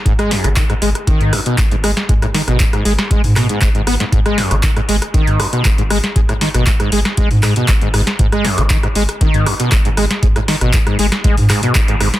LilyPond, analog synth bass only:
\new Staff \with { instrumentName = "Analog synth bass" } { \clef bass \time 4/4 \key gis \minor \tempo 4 = 118 gis,,16 r8 gis,,16 r8 gis,,16 r8 gis,16 r8 gis,,8. r16 | gis,,16 r8 gis,,16 r8 gis,,16 r8 gis,16 r8 gis,,8. r16 | gis,,16 r8 gis,,16 r8 gis,,16 r8 gis,16 r8 gis,,8. r16 | gis,,16 r8 gis,,16 r8 gis,,16 r8 gis,16 r8 gis,,8. r16 |
gis,,16 r8 gis,,16 r8 gis,,16 r8 gis,16 r8 gis,,8. r16 | gis,,16 r8 gis,,16 r8 gis,,16 r8 gis,16 r8 gis,,8. r16 | }